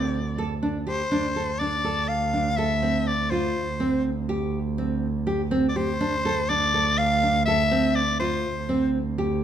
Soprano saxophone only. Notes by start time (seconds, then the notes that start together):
Already playing: D5
0.88 C5
1.59 D5
2.08 F5
2.57 E5
3.07 D5
3.30 C5
5.69 D5
5.77 C5
6.49 D5
6.98 F5
7.46 E5
7.95 D5
8.20 C5